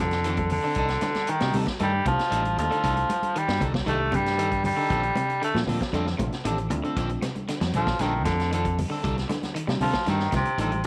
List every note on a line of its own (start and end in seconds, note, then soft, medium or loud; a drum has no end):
0.00 0.57 F2 medium
0.00 0.22 C3 medium
0.00 0.48 D3 medium
0.00 muted clean electric guitar stroke soft
0.00 high conga medium
0.00 low conga medium
0.11 snare soft
0.11 closed hi-hat soft
0.24 0.49 D#3 medium
0.24 0.39 F3 medium
0.24 0.38 C4 medium
0.24 0.38 D4 medium
0.24 0.37 A4 medium
0.24 closed hi-hat medium
0.37 muted clean electric guitar stroke soft
0.37 kick medium
0.37 closed hi-hat soft
0.37 high conga medium
0.49 1.32 D3 medium
0.49 muted clean electric guitar stroke soft
0.49 open hi-hat medium
0.49 low conga medium
0.64 0.76 D3 medium
0.64 0.77 C4 soft
0.64 0.77 D4 soft
0.64 0.77 A4 soft
0.75 0.96 C2 loud
0.75 0.90 D4 medium
0.75 0.89 D#4 medium
0.75 0.89 A4 medium
0.75 muted clean electric guitar stroke medium
0.75 kick medium
0.75 closed hi-hat medium
0.88 muted clean electric guitar stroke soft
0.88 snare soft
0.88 closed hi-hat soft
1.01 1.26 D3 medium
1.01 muted clean electric guitar stroke soft
1.01 snare soft
1.01 closed hi-hat soft
1.01 high conga medium
1.14 snare soft
1.14 closed hi-hat soft
1.14 high conga medium
1.27 1.41 D#3 medium
1.27 1.56 D#3 medium
1.27 muted clean electric guitar stroke soft
1.27 closed hi-hat medium
1.40 1.52 C3 medium
1.40 1.65 G3 medium
1.40 1.62 A3 medium
1.40 1.62 D4 medium
1.40 1.62 D#4 medium
1.40 1.62 G4 medium
1.40 snare medium
1.40 closed hi-hat soft
1.40 high conga medium
1.53 1.65 C3 loud
1.53 1.68 G3 medium
1.53 1.67 D4 medium
1.53 1.67 D#4 medium
1.53 1.66 A4 medium
1.53 open hi-hat medium
1.53 high conga medium
1.53 low conga medium
1.67 muted clean electric guitar stroke soft
1.67 kick medium
1.67 snare medium
1.67 closed hi-hat soft
1.79 2.00 G2 loud
1.79 2.04 D#3 medium
1.79 1.93 G3 medium
1.79 2.06 G3 medium
1.79 1.94 A3 medium
1.79 1.92 D4 medium
1.79 1.95 D4 medium
1.79 1.92 D#4 medium
1.79 1.95 D#4 medium
1.79 1.95 G4 medium
1.79 1.92 A4 medium
1.79 closed hi-hat medium
1.79 high conga medium
1.93 muted clean electric guitar stroke soft
2.05 2.16 C2 medium
2.05 2.29 C3 medium
2.05 2.55 F3 medium
2.05 2.20 A3 medium
2.05 2.20 D4 medium
2.05 2.20 D#4 medium
2.05 2.20 G4 medium
2.05 muted clean electric guitar stroke soft
2.05 kick medium
2.05 closed hi-hat medium
2.05 high conga medium
2.19 snare soft
2.19 closed hi-hat soft
2.30 2.59 A1 medium
2.30 2.44 G3 medium
2.30 2.46 A3 medium
2.30 2.44 D4 medium
2.30 2.46 D4 medium
2.30 2.43 D#4 medium
2.30 2.46 D#4 medium
2.30 2.43 A4 medium
2.30 closed hi-hat medium
2.34 2.47 F4 medium
2.44 muted clean electric guitar stroke soft
2.44 closed hi-hat soft
2.44 high conga medium
2.57 2.68 D#2 medium
2.57 3.39 F3 medium
2.57 3.11 A3 medium
2.57 3.11 D4 medium
2.57 3.11 D#4 medium
2.57 muted clean electric guitar stroke soft
2.57 closed hi-hat medium
2.57 low conga medium
2.61 3.12 A4 medium
2.70 2.83 D3 medium
2.70 2.82 D4 soft
2.70 2.82 D#4 soft
2.70 2.83 A4 soft
2.70 closed hi-hat soft
2.83 3.03 C2 loud
2.83 2.97 G3 medium
2.83 2.95 D4 medium
2.83 2.95 D#4 medium
2.83 2.95 A4 medium
2.83 kick medium
2.83 closed hi-hat medium
2.96 muted clean electric guitar stroke soft
2.96 closed hi-hat soft
3.09 muted clean electric guitar stroke soft
3.09 closed hi-hat medium
3.09 high conga medium
3.23 closed hi-hat soft
3.23 high conga medium
3.35 3.47 D#3 medium
3.35 3.63 G3 medium
3.35 muted clean electric guitar stroke soft
3.35 closed hi-hat medium
3.48 3.58 G2 medium
3.48 3.71 G3 medium
3.48 snare medium
3.48 closed hi-hat soft
3.60 3.81 C2 medium
3.60 3.74 G3 medium
3.60 3.73 D4 medium
3.60 3.73 D#4 medium
3.60 3.73 A4 medium
3.60 kick medium
3.60 closed hi-hat medium
3.60 high conga medium
3.60 low conga medium
3.74 muted clean electric guitar stroke soft
3.74 kick medium
3.74 snare medium
3.86 4.14 C2 loud
3.86 4.10 D#3 medium
3.86 4.00 G3 medium
3.86 4.40 A3 medium
3.86 4.16 A3 medium
3.86 3.99 D4 medium
3.86 4.40 D4 medium
3.86 3.99 D#4 medium
3.86 4.40 D#4 medium
3.86 4.40 G4 medium
3.86 3.99 A4 medium
3.86 closed hi-hat medium
3.86 high conga medium
4.00 muted clean electric guitar stroke soft
4.12 4.71 G2 medium
4.12 4.36 C3 medium
4.12 4.65 G3 medium
4.12 muted clean electric guitar stroke soft
4.12 kick medium
4.12 closed hi-hat medium
4.12 high conga medium
4.12 low conga medium
4.26 snare soft
4.26 closed hi-hat soft
4.38 4.62 D#3 medium
4.38 4.52 G3 medium
4.38 4.51 D4 medium
4.38 4.51 D#4 medium
4.38 4.50 A4 medium
4.38 closed hi-hat medium
4.51 muted clean electric guitar stroke soft
4.51 kick medium
4.51 closed hi-hat soft
4.64 5.39 G3 medium
4.64 muted clean electric guitar stroke soft
4.64 open hi-hat medium
4.64 high conga medium
4.64 low conga medium
4.77 4.89 D3 medium
4.77 4.90 D#4 soft
4.77 4.90 A4 soft
4.77 muted clean electric guitar stroke soft
4.90 5.10 A#1 loud
4.90 5.04 F3 medium
4.90 5.03 C4 medium
4.90 5.03 D4 medium
4.90 5.02 A4 medium
4.90 kick medium
4.90 closed hi-hat medium
4.90 low conga medium
5.03 muted clean electric guitar stroke soft
5.03 closed hi-hat soft
5.16 5.39 C3 medium
5.16 muted clean electric guitar stroke soft
5.16 closed hi-hat soft
5.16 high conga loud
5.30 closed hi-hat soft
5.42 5.54 D3 medium
5.42 5.59 A3 medium
5.42 muted clean electric guitar stroke soft
5.42 closed hi-hat medium
5.54 5.65 A#2 medium
5.54 5.78 F3 medium
5.54 5.75 A3 medium
5.54 5.75 C4 medium
5.54 5.75 D4 medium
5.54 5.75 F4 medium
5.54 snare medium
5.54 closed hi-hat soft
5.54 high conga medium
5.67 5.77 A#2 loud
5.67 5.81 F3 medium
5.67 5.81 C4 medium
5.67 5.80 D4 medium
5.67 5.80 A4 medium
5.67 open hi-hat medium
5.67 high conga medium
5.67 low conga medium
5.81 muted clean electric guitar stroke soft
5.81 kick medium
5.81 snare medium
5.81 closed hi-hat soft
5.93 6.13 F2 loud
5.93 6.17 D3 medium
5.93 6.07 F3 medium
5.93 6.07 A3 medium
5.93 6.07 C4 loud
5.93 6.08 C4 medium
5.93 6.07 D4 loud
5.93 6.08 D4 medium
5.93 6.08 F4 loud
5.93 6.06 A4 loud
5.93 closed hi-hat medium
5.93 high conga medium
6.06 muted clean electric guitar stroke soft
6.06 snare soft
6.18 6.29 A#1 medium
6.18 6.42 C3 medium
6.18 6.33 A3 medium
6.18 6.33 C4 medium
6.18 6.33 D4 medium
6.18 6.33 F4 loud
6.18 muted clean electric guitar stroke soft
6.18 kick medium
6.18 closed hi-hat medium
6.18 high conga medium
6.32 snare soft
6.32 closed hi-hat soft
6.44 6.70 A1 medium
6.44 6.68 D#3 medium
6.44 6.58 F3 medium
6.44 6.58 A3 medium
6.44 6.59 C4 medium
6.44 6.58 C4 medium
6.44 6.59 D4 medium
6.44 6.58 D4 medium
6.44 6.59 G4 medium
6.44 6.58 A4 medium
6.44 closed hi-hat medium
6.58 muted clean electric guitar stroke soft
6.58 closed hi-hat soft
6.70 6.80 D2 medium
6.70 7.23 A3 medium
6.70 7.23 C4 medium
6.70 7.24 D4 medium
6.70 7.24 F4 loud
6.70 muted clean electric guitar stroke soft
6.70 closed hi-hat medium
6.70 high conga medium
6.70 low conga medium
6.84 6.95 D3 medium
6.84 6.97 C4 soft
6.84 6.97 A4 medium
6.84 muted clean electric guitar stroke soft
6.84 closed hi-hat soft
6.96 7.16 A#1 loud
6.96 7.10 F3 medium
6.96 7.11 C4 medium
6.96 7.10 D4 medium
6.96 7.10 A4 medium
6.96 kick medium
6.96 closed hi-hat medium
6.96 low conga medium
7.09 muted clean electric guitar stroke soft
7.09 closed hi-hat soft
7.22 7.46 C3 medium
7.22 muted clean electric guitar stroke soft
7.22 snare soft
7.22 closed hi-hat medium
7.22 high conga medium
7.35 closed hi-hat soft
7.35 high conga medium
7.48 7.60 D3 medium
7.48 muted clean electric guitar stroke soft
7.48 snare soft
7.48 closed hi-hat medium
7.61 7.71 F2 medium
7.61 7.85 F3 medium
7.61 snare medium
7.61 closed hi-hat soft
7.61 high conga medium
7.73 7.94 A#1 medium
7.73 8.03 F3 medium
7.73 7.88 C4 medium
7.73 7.89 D4 medium
7.73 7.88 A4 medium
7.73 muted clean electric guitar stroke medium
7.73 kick medium
7.73 closed hi-hat medium
7.73 high conga medium
7.73 low conga medium
7.87 muted clean electric guitar stroke soft
7.87 kick medium
7.87 snare medium
7.99 8.25 A#1 medium
7.99 8.24 D3 medium
7.99 8.24 D#3 medium
7.99 8.14 F3 medium
7.99 8.53 A3 medium
7.99 8.53 C4 medium
7.99 8.14 C4 medium
7.99 8.53 D4 medium
7.99 8.14 D4 medium
7.99 8.53 F4 medium
7.99 8.13 A4 medium
7.99 snare soft
7.99 closed hi-hat medium
7.99 high conga medium
8.14 muted clean electric guitar stroke soft
8.24 8.84 F2 medium
8.24 8.50 D3 medium
8.24 muted clean electric guitar stroke soft
8.24 kick medium
8.24 snare soft
8.24 closed hi-hat medium
8.24 high conga medium
8.24 low conga medium
8.40 snare soft
8.40 closed hi-hat soft
8.51 8.77 D3 medium
8.51 8.75 D#3 medium
8.51 8.66 F3 medium
8.51 8.66 C4 medium
8.51 8.65 D4 medium
8.51 8.65 A4 medium
8.51 closed hi-hat medium
8.65 muted clean electric guitar stroke soft
8.65 kick medium
8.65 closed hi-hat soft
8.78 muted clean electric guitar stroke soft
8.78 open hi-hat medium
8.78 high conga medium
8.78 low conga medium
8.90 9.02 D3 medium
8.90 9.03 C4 soft
8.90 9.03 D4 medium
8.90 9.03 A4 medium
9.03 9.24 C2 loud
9.03 9.17 G3 medium
9.03 9.17 D4 medium
9.03 9.16 D#4 medium
9.03 9.16 A4 medium
9.03 kick medium
9.03 closed hi-hat medium
9.03 low conga medium
9.17 muted clean electric guitar stroke soft
9.17 snare soft
9.17 closed hi-hat soft
9.29 9.53 D3 medium
9.29 muted clean electric guitar stroke soft
9.29 snare soft
9.29 closed hi-hat medium
9.29 high conga medium
9.43 snare soft
9.43 closed hi-hat soft
9.43 high conga medium
9.55 9.67 D#3 medium
9.55 muted clean electric guitar stroke soft
9.55 closed hi-hat medium
9.67 9.78 C3 medium
9.67 9.91 G3 medium
9.67 9.88 G3 medium
9.67 9.89 A3 medium
9.67 9.89 D4 medium
9.67 9.89 D#4 medium
9.67 snare medium
9.67 closed hi-hat soft
9.67 high conga medium
9.80 9.91 C3 loud
9.80 10.11 F3 loud
9.80 9.95 G3 medium
9.80 9.95 D4 medium
9.80 9.95 D#4 medium
9.80 9.94 A4 medium
9.80 open hi-hat medium
9.80 high conga medium
9.80 low conga medium
9.93 muted clean electric guitar stroke soft
9.93 kick medium
9.93 snare medium
9.93 closed hi-hat soft
10.06 10.27 G2 loud
10.06 10.30 D#3 medium
10.06 10.34 D#3 medium
10.06 10.20 G3 medium
10.06 10.21 G3 medium
10.06 10.21 A3 medium
10.06 10.21 D4 medium
10.06 10.20 D4 medium
10.06 10.21 D#4 medium
10.06 10.20 D#4 medium
10.06 10.20 A4 medium
10.06 snare soft
10.06 closed hi-hat medium
10.06 high conga medium
10.19 muted clean electric guitar stroke soft
10.19 snare soft
10.32 10.42 C2 medium
10.32 10.56 C3 medium
10.32 10.58 C3 medium
10.32 10.47 G3 medium
10.32 10.47 A3 medium
10.32 10.47 D4 medium
10.32 10.47 F4 medium
10.32 muted clean electric guitar stroke soft
10.32 kick medium
10.32 snare soft
10.32 closed hi-hat soft
10.32 high conga loud
10.32 low conga medium
10.45 closed hi-hat soft
10.58 10.85 A1 medium
10.58 10.84 C3 medium
10.58 10.82 D#3 medium
10.58 10.72 G3 medium
10.58 10.72 A3 medium
10.58 10.72 D4 medium
10.58 10.73 D#4 medium
10.58 10.72 F4 medium
10.58 10.72 A4 medium
10.58 closed hi-hat medium
10.72 muted clean electric guitar stroke soft
10.72 closed hi-hat soft
10.72 high conga medium
10.84 closed hi-hat medium